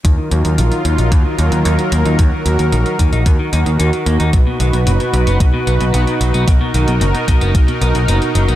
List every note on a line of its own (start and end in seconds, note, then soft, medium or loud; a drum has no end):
0.05 0.15 D#2 medium
0.05 0.09 D#3 medium
0.05 4.29 F#3 medium
0.05 8.55 D#4 medium
0.05 2.17 F4 medium
0.05 4.29 A#4 medium
0.05 kick loud
0.05 closed hi-hat medium
0.18 0.28 D#3 medium
0.31 0.42 D#2 medium
0.31 0.41 F#3 medium
0.31 closed hi-hat medium
0.45 0.55 D#2 medium
0.45 0.52 D#3 medium
0.45 closed hi-hat soft
0.58 0.69 A#1 medium
0.58 0.62 D#3 medium
0.58 closed hi-hat medium
0.72 0.82 D#3 medium
0.72 closed hi-hat soft
0.85 0.95 D#2 medium
0.85 0.95 D#3 medium
0.85 closed hi-hat medium
0.98 1.09 A#1 medium
0.98 1.08 D#4 medium
0.98 closed hi-hat medium
1.12 1.22 D#2 medium
1.12 1.16 D#3 medium
1.12 kick loud
1.12 closed hi-hat medium
1.25 1.35 D#3 medium
1.38 1.49 D#2 medium
1.38 1.45 D#4 medium
1.38 closed hi-hat medium
1.52 1.62 D#2 medium
1.52 1.56 D#3 medium
1.52 closed hi-hat medium
1.65 1.76 D#2 medium
1.65 1.75 D#4 medium
1.65 closed hi-hat medium
1.79 1.89 D#3 medium
1.79 closed hi-hat soft
1.92 2.03 D#2 medium
1.92 2.02 A#3 medium
1.92 closed hi-hat medium
2.05 2.16 D#2 medium
2.05 2.15 D#4 medium
2.05 closed hi-hat soft
2.19 2.29 D#2 medium
2.19 2.23 D#3 medium
2.19 8.55 F#4 medium
2.19 kick loud
2.19 closed hi-hat medium
2.32 2.42 D#3 medium
2.46 2.56 D#2 medium
2.46 2.56 F#3 medium
2.46 closed hi-hat medium
2.59 2.69 D#2 medium
2.59 2.66 D#3 medium
2.59 closed hi-hat soft
2.72 2.83 A#1 medium
2.72 2.76 D#3 medium
2.72 closed hi-hat medium
2.86 2.96 D#3 medium
2.86 closed hi-hat soft
2.99 3.10 D#2 medium
2.99 3.09 D#3 medium
2.99 kick medium
2.99 closed hi-hat medium
3.13 3.23 A#1 medium
3.13 3.23 D#4 medium
3.13 closed hi-hat soft
3.26 3.36 D#2 medium
3.26 3.30 D#3 medium
3.26 kick loud
3.26 closed hi-hat medium
3.39 3.49 D#3 medium
3.53 3.63 D#2 medium
3.53 3.59 D#4 medium
3.53 closed hi-hat medium
3.66 3.77 D#2 medium
3.66 3.70 D#3 medium
3.66 closed hi-hat medium
3.79 3.90 D#2 medium
3.79 3.90 D#4 loud
3.79 closed hi-hat medium
3.93 4.03 D#3 medium
3.93 closed hi-hat soft
4.06 4.17 D#2 medium
4.06 4.16 A#3 medium
4.06 closed hi-hat medium
4.20 4.30 D#2 medium
4.20 4.30 D#4 loud
4.20 closed hi-hat soft
4.33 4.44 B1 loud
4.33 4.37 B2 medium
4.33 6.45 B4 medium
4.33 kick loud
4.33 closed hi-hat medium
4.47 4.57 B2 medium
4.60 4.70 B1 medium
4.60 4.70 D#3 medium
4.60 closed hi-hat medium
4.73 4.84 B1 medium
4.73 4.80 B2 medium
4.73 closed hi-hat medium
4.87 4.97 F#1 loud
4.87 4.91 B2 medium
4.87 closed hi-hat medium
5.00 5.10 B2 medium
5.00 closed hi-hat soft
5.13 5.24 B1 medium
5.13 5.24 B2 medium
5.13 closed hi-hat medium
5.27 5.37 F#1 medium
5.27 5.37 B3 medium
5.27 closed hi-hat soft
5.40 5.51 B1 medium
5.40 5.44 B2 medium
5.40 kick loud
5.40 closed hi-hat medium
5.54 5.64 B2 medium
5.67 5.77 B1 medium
5.67 5.74 B3 medium
5.67 closed hi-hat medium
5.81 5.91 B1 medium
5.81 5.85 B2 medium
5.81 closed hi-hat soft
5.94 6.04 B1 medium
5.94 6.04 B3 loud
5.94 closed hi-hat medium
6.07 6.17 B2 medium
6.07 closed hi-hat soft
6.21 6.31 B1 medium
6.21 6.31 F#3 medium
6.21 closed hi-hat medium
6.34 6.44 B1 medium
6.34 6.44 B3 medium
6.34 closed hi-hat soft
6.47 6.58 B1 medium
6.47 6.51 B2 medium
6.47 8.55 A#4 medium
6.47 kick loud
6.47 closed hi-hat medium
6.61 6.71 B2 medium
6.74 6.85 B1 medium
6.74 6.84 D#3 medium
6.74 closed hi-hat medium
6.88 6.98 B1 medium
6.88 6.94 B2 medium
6.88 closed hi-hat soft
7.01 7.11 F#1 loud
7.01 7.05 B2 medium
7.01 closed hi-hat medium
7.14 7.24 B2 medium
7.14 closed hi-hat soft
7.28 7.38 B1 medium
7.28 7.38 B2 medium
7.28 kick medium
7.28 closed hi-hat medium
7.41 7.52 F#1 medium
7.41 7.51 B3 medium
7.41 closed hi-hat soft
7.55 7.65 B1 medium
7.55 7.59 B2 medium
7.55 kick loud
7.55 closed hi-hat medium
7.68 7.78 B2 medium
7.68 closed hi-hat soft
7.81 7.92 B1 medium
7.81 7.88 B3 medium
7.81 closed hi-hat medium
7.95 8.05 B1 medium
7.95 7.99 B2 medium
7.95 closed hi-hat soft
8.08 8.19 F#1 medium
8.08 8.18 B3 medium
8.08 closed hi-hat medium
8.22 8.32 B2 medium
8.22 closed hi-hat soft
8.35 8.45 F#1 medium
8.35 8.45 F#3 medium
8.35 closed hi-hat medium
8.48 8.55 B1 medium
8.48 8.55 B3 loud
8.48 closed hi-hat soft